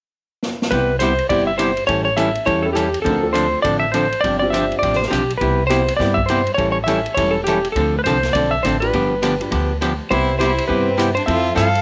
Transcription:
0.43 snare
0.62 snare
0.71 upright bass C2, hollow-body jazz guitar C3 G3 B3 E4 G4, electric slide guitar B4, kick, ride
0.99 hollow-body jazz guitar C3 G3 B3 E4 G4, electric slide guitar C5, hi-hat pedal, ride
1.19 ride
1.29 upright bass G1, hollow-body jazz guitar C3 G3 B3 E4 G4, electric slide guitar D5, kick, ride
1.47 electric slide guitar E5
1.58 hollow-body jazz guitar C3 G3 B3 E4 G4, electric slide guitar C5, hi-hat pedal, ride
1.77 ride
1.87 upright bass A1, hollow-body jazz guitar E3 G3 C#4 E4 A4, electric slide guitar C#5, kick, ride
2.05 electric slide guitar C#5
2.17 hollow-body jazz guitar E3 G3 C#4 E4 A4, electric slide guitar E5, hi-hat pedal, ride
2.35 ride
2.46 upright bass E2, hollow-body jazz guitar E3 G3 C#4 E4 A4, electric slide guitar C#5, kick, ride
2.62 upright piano C#4 E4 G4 A4, electric slide guitar A4
2.73 hollow-body jazz guitar E3 G3 C#4 E4 A4, electric slide guitar G4, hi-hat pedal, ride
2.94 ride
3.02 hollow-body jazz guitar D3 F3 C4 D4 A4, upright piano C#4 D#4 F#4 A#4, electric slide guitar A4, kick, ride
3.06 upright bass D2
3.22 upright piano C4 D4 F4 A4
3.33 hollow-body jazz guitar D3 F3 C4 D4 A4, electric slide guitar C5, hi-hat pedal, ride
3.62 upright bass A1, hollow-body jazz guitar D3 F3 C4 D4 A4, electric slide guitar D5, kick, ride
3.80 electric slide guitar E5
3.92 hollow-body jazz guitar D3 F3 C4 D4 A4, electric slide guitar C5, hi-hat pedal, ride
4.12 ride
4.21 upright bass G1, hollow-body jazz guitar C3 F3 C4 D4, electric slide guitar D5, kick, ride
4.25 hollow-body jazz guitar G4
4.39 upright piano C4 D4 F4 G4, electric slide guitar D5
4.50 hollow-body jazz guitar C3 F3 C4 D4 G4, electric slide guitar E5, hi-hat pedal, ride
4.72 ride
4.79 electric slide guitar D5, kick
4.83 upright bass A1, hollow-body jazz guitar C3 F3 C4 D4 G4, ride
4.93 electric slide guitar C5, snare
5.03 snare
5.08 hollow-body jazz guitar C3 F3 C4 D4 G4, electric slide guitar G4
5.12 upright bass B1, hi-hat pedal, ride
5.30 ride
5.38 upright bass C2, hollow-body jazz guitar C3 G3 B3 G4, electric slide guitar B4, kick, ride
5.42 hollow-body jazz guitar E4
5.67 hollow-body jazz guitar C3 G3 B3 E4 G4, upright piano B3 C4 E4 G4, electric slide guitar C5, hi-hat pedal, ride
5.88 ride
5.97 upright bass G2, hollow-body jazz guitar C3 G3 B3 E4 G4, electric slide guitar D5, kick, snare
6.14 electric slide guitar E5, kick
6.26 hollow-body jazz guitar C3 G3 B3 G4, electric slide guitar C5, hi-hat pedal, ride
6.30 hollow-body jazz guitar E4
6.47 ride
6.54 upright bass A1, hollow-body jazz guitar E3 G3 C#4 E4 A4, electric slide guitar C#5, kick, ride
6.72 electric slide guitar C#5
6.84 hollow-body jazz guitar E3 G3 E4, electric slide guitar E5, hi-hat pedal, ride
6.88 hollow-body jazz guitar C#4 A4
7.06 ride
7.14 upright bass E1, hollow-body jazz guitar E3 G3 C#4 E4 A4, electric slide guitar C#5, kick, ride
7.31 electric slide guitar A4
7.44 hollow-body jazz guitar E3 G3 C#4 E4, electric slide guitar G4, hi-hat pedal, ride
7.48 hollow-body jazz guitar A4
7.65 ride
7.72 upright bass D2, hollow-body jazz guitar D3 C4, electric slide guitar A4, kick, ride
7.77 hollow-body jazz guitar F3 D4 A4
7.99 electric slide guitar B4
8.04 upright bass C2, hollow-body jazz guitar D3 F3 C4 D4 A4, electric slide guitar C5, hi-hat pedal, ride
8.23 snare, ride
8.33 upright bass B1, hollow-body jazz guitar D3 F3 C4 D4 A4, electric slide guitar D5, kick, ride
8.51 electric slide guitar E5
8.63 upright bass A1, hollow-body jazz guitar D3 F3 C4 D4 A4, electric slide guitar C5, hi-hat pedal, ride
8.80 upright piano D4 F4 G4 B4, electric slide guitar B4, ride
8.93 upright bass G1, hollow-body jazz guitar D3 F3 B3 D4 G4, kick, ride
9.22 hollow-body jazz guitar D3 F3 B3 D4 G4, hi-hat pedal, ride
9.41 upright piano D4 F4 G4 B4, ride
9.51 upright bass D2, hollow-body jazz guitar D3 F3 B3 D4 G4, kick, ride
9.81 hollow-body jazz guitar D3 F3 B3 D4 G4, hi-hat pedal, ride
10.10 upright bass C2, hollow-body jazz guitar C3 G3 B3 E4 G4, upright piano C4 E4 G4 B4, fiddle E4, electric slide guitar C5, kick, ride
10.39 hollow-body jazz guitar C3 G3 B3 E4 G4, fiddle E4, electric slide guitar C5, hi-hat pedal, ride
10.58 ride
10.68 upright bass G2, hollow-body jazz guitar C3 G3 B3 E4 G4, fiddle C4, electric slide guitar B4, kick
10.97 hollow-body jazz guitar C3 G3 B3 E4 G4, hi-hat pedal, ride
11.15 fiddle D4, electric slide guitar C5, ride
11.26 upright bass F2, hollow-body jazz guitar F3 C4 E4 A4, upright piano C4 F4 A4, fiddle F4, electric slide guitar E5, kick, ride
11.55 upright bass G2, hollow-body jazz guitar F3 C4 E4 A4, fiddle A4, electric slide guitar F5, hi-hat pedal, ride
11.75 ride

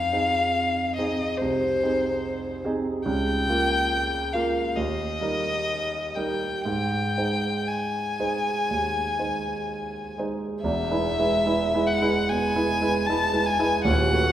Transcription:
Already playing: grand piano F2, violin F5
0.13 grand piano C4 D#4 G#4
0.96 grand piano C4 D#4 G#4, violin D#5
1.37 violin C5
1.41 grand piano C2
1.83 grand piano C4 D#4 G#4
2.65 grand piano C4 D#4 G#4
3.06 grand piano C#2, violin G5
3.49 grand piano A#3 F4 A#4
4.33 grand piano A#3 F4 A#4, violin F5
4.76 grand piano D#2, violin D#5
5.21 grand piano G3 D#4 A#4
6.15 grand piano G3 D#4 A#4, violin G5
6.65 grand piano G#2, violin G5
7.18 grand piano G#3 D#4 C5
7.67 violin G#5
8.20 grand piano G#3 D#4 C5
8.70 grand piano D#2
9.18 grand piano G#3 D#4 C5
10.18 grand piano G#3 D#4 C5
10.63 grand piano E1 E2, violin E5
10.91 grand piano G#3 E4 B4
11.19 grand piano G#3 E4 B4
11.46 grand piano G#3 E4 B4
11.74 grand piano G#3 E4 B4
11.87 violin F#5
12.02 grand piano G#3 E4 B4
12.29 grand piano B2, violin G#5
12.56 grand piano G#3 E4 B4
12.81 grand piano G#3 E4 B4
13.06 grand piano G#3 E4 B4, violin A5
13.33 grand piano G#3 E4 B4
13.46 violin G#5
13.59 grand piano G#3 E4 B4
13.84 grand piano D#1 D#2, violin F#5
14.13 grand piano A3 F#4 B4

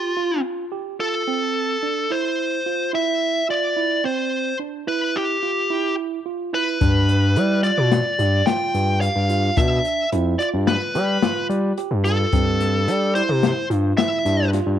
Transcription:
Already playing: lead electric guitar F4, tine electric piano G4
0.17 tine electric piano F4
0.72 tine electric piano G4
1.00 tine electric piano F4, lead electric guitar A4
1.27 tine electric piano C4
1.83 tine electric piano D4
2.10 tine electric piano E4, lead electric guitar C5
2.66 tine electric piano F4
2.93 tine electric piano E4, lead electric guitar E5
3.49 tine electric piano F4, lead electric guitar D5
3.76 tine electric piano E4
4.04 tine electric piano C4, lead electric guitar C5
4.59 tine electric piano D4
4.87 tine electric piano E4, lead electric guitar B4
5.16 lead electric guitar G4
5.43 tine electric piano F4
5.70 tine electric piano E4
6.26 tine electric piano F4
6.53 tine electric piano E4, lead electric guitar B4
6.81 analog synth bass G2, tine electric piano D4, kick, closed hi-hat
7.09 closed hi-hat
7.36 analog synth bass G3, tine electric piano E4, closed hi-hat
7.63 lead electric guitar D5, closed hi-hat
7.78 analog synth bass B2
7.92 snare, closed hi-hat
8.19 analog synth bass G2, tine electric piano G4, closed hi-hat
8.46 tine electric piano F4, lead electric guitar G5, snare, closed hi-hat
8.74 analog synth bass G2, closed hi-hat
9.01 tine electric piano G4, lead electric guitar F5, closed hi-hat
9.16 analog synth bass G2
9.29 tine electric piano F4, closed hi-hat
9.57 analog synth bass B2, tine electric piano D4, lead electric guitar E5, kick, closed hi-hat
9.85 closed hi-hat
10.12 analog synth bass F2, tine electric piano E4, closed hi-hat
10.39 tine electric piano F4, lead electric guitar D5, closed hi-hat
10.54 analog synth bass G2
10.67 lead electric guitar B4, snare, closed hi-hat
10.95 analog synth bass G3, tine electric piano G4, snare, closed hi-hat
11.22 tine electric piano F4, snare, closed hi-hat
11.49 analog synth bass G3, closed hi-hat
11.78 tine electric piano G4, closed hi-hat
11.91 analog synth bass G2
12.04 tine electric piano F4, lead electric guitar A4, closed hi-hat
12.33 analog synth bass G2, tine electric piano C4, kick, closed hi-hat
12.61 snare, closed hi-hat
12.87 analog synth bass G3, tine electric piano D4, closed hi-hat
13.15 tine electric piano E4, lead electric guitar C5, closed hi-hat
13.29 analog synth bass C3
13.43 snare, closed hi-hat
13.70 analog synth bass G2, tine electric piano F4, closed hi-hat
13.97 tine electric piano E4, lead electric guitar E5, snare, closed hi-hat
14.25 analog synth bass G2, snare, closed hi-hat
14.53 tine electric piano F4, snare, closed hi-hat
14.66 analog synth bass G2

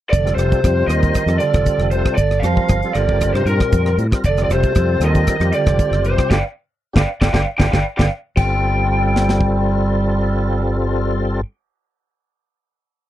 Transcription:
0.10 fretless electric bass F1, bass clarinet D3, lead electric guitar D5, kick, closed hi-hat
0.25 tonewheel organ G3 C4 F4 A4, cross-stick, closed hi-hat
0.35 fretless electric bass F1, lead electric guitar C5, closed hi-hat
0.39 bass clarinet C3, cross-stick
0.52 kick, closed hi-hat
0.63 fretless electric bass F2, tonewheel organ G3 C4 F4 C5, kick, cross-stick, closed hi-hat
0.87 fretless electric bass D#2, lead electric guitar D#5, cross-stick, closed hi-hat
0.91 bass clarinet D#3
1.03 kick, closed hi-hat
1.14 kick, cross-stick, closed hi-hat
1.26 fretless electric bass F2, tonewheel organ G3 C4 F4 A4, cross-stick, closed hi-hat
1.39 lead electric guitar D5, closed hi-hat
1.43 bass clarinet D3
1.54 fretless electric bass F1, kick, cross-stick, closed hi-hat
1.66 kick, closed hi-hat
1.78 fretless electric bass F1, cross-stick
1.91 bass clarinet C3, lead electric guitar C5, closed hi-hat
2.06 kick, cross-stick
2.15 fretless electric bass G1, bass clarinet D3, lead electric guitar D5, kick, closed hi-hat
2.31 cross-stick
2.40 fretless electric bass F2, lead electric guitar F5, closed hi-hat
2.44 bass clarinet F3, tonewheel organ G3 C4 F4 A#4, cross-stick
2.57 muted fretless electric bass stroke, kick
2.69 fretless electric bass G1, kick, cross-stick, closed hi-hat
2.83 tonewheel organ G3 C4 F4 A4, closed hi-hat
2.93 fretless electric bass G1, bass clarinet D3, tonewheel organ G3 C4 F4 A#4, lead electric guitar D5, cross-stick, closed hi-hat
3.09 kick
3.21 kick, cross-stick, closed hi-hat
3.34 fretless electric bass G2, bass clarinet C3, lead electric guitar C5, cross-stick
3.45 fretless electric bass G2, bass clarinet A#2, tonewheel organ G3 C4 F4 A#4, lead electric guitar A#4, closed hi-hat
3.60 kick, cross-stick, closed hi-hat
3.72 fretless electric bass F2, kick, closed hi-hat
3.86 cross-stick
3.98 fretless electric bass A2, closed hi-hat
4.11 tonewheel organ G3 C4 F4 A#4, kick, cross-stick, closed hi-hat
4.24 fretless electric bass F1, bass clarinet D3, lead electric guitar D5, kick, closed hi-hat
4.37 tonewheel organ G3 C4 F4 A4, cross-stick, closed hi-hat
4.44 bass clarinet D3, lead electric guitar D5
4.49 fretless electric bass F1, lead electric guitar C5, cross-stick, closed hi-hat
4.53 bass clarinet C3
4.63 kick, closed hi-hat
4.75 fretless electric bass F2, tonewheel organ G3 C4 F4 A4, kick, cross-stick, closed hi-hat
5.00 fretless electric bass D#2, bass clarinet D#3, cross-stick, closed hi-hat
5.05 lead electric guitar D#5
5.15 kick, closed hi-hat
5.27 kick, cross-stick, closed hi-hat
5.39 fretless electric bass F2, tonewheel organ G3 C4 F4 G4, cross-stick, closed hi-hat
5.53 bass clarinet D3, lead electric guitar D5, closed hi-hat
5.66 fretless electric bass F1, kick, cross-stick, closed hi-hat
5.79 kick, closed hi-hat
5.91 fretless electric bass F#1, cross-stick
6.04 bass clarinet C3, lead electric guitar C5, closed hi-hat
6.18 kick, cross-stick
6.29 fretless electric bass G1, bass clarinet D3, tonewheel organ D4 F4 G4, lead electric guitar D5 F5 G5, kick, snare
6.93 fretless electric bass G1, bass clarinet D3, tonewheel organ D4 F4 G4, kick, snare
6.97 lead electric guitar D5 F5 G5
7.21 fretless electric bass G1, bass clarinet D3, tonewheel organ D4 F4 G4, lead electric guitar D5 F5 G5, kick, snare
7.32 fretless electric bass G1, bass clarinet D3, tonewheel organ D4 F4 G4, lead electric guitar D5 F5 G5, kick, snare
7.58 fretless electric bass G1, bass clarinet D3, tonewheel organ D4 F4 G4, lead electric guitar D5 F5 G5, kick, snare
7.71 fretless electric bass G1, bass clarinet D3, tonewheel organ D4 F4 G4, lead electric guitar D5 F5 G5, kick, snare
7.97 fretless electric bass G1, tonewheel organ D4 F4 G4, lead electric guitar D5 F5 G5, kick, snare
8.01 bass clarinet D3
8.36 fretless electric bass G1, tonewheel organ G3 C4 F4 A4, bass clarinet G3, lead electric guitar G5, kick, crash
9.16 snare
9.29 snare
9.41 kick

